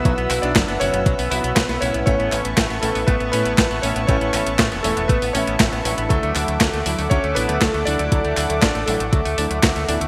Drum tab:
HH |xxoxxxoxxooxxxox|xxoxxxooxxoxxxox|xxoxxxoxxooxxxox|xxoxxxooxxoxxxox|
CP |--x-x-------x---|--x-x-------x---|--x-x-------x---|--x-x-------x---|
SD |----o-------oo--|----o-------o---|----o-------o---|----o-------o---|
BD |o---o---o---o---|o---o---o---o---|o---o---o---o---|o---o---o---o---|

HH |xxoxxxoxxooxxxox|
CP |--x-x-------x---|
SD |----o-------o---|
BD |o---o---o---o---|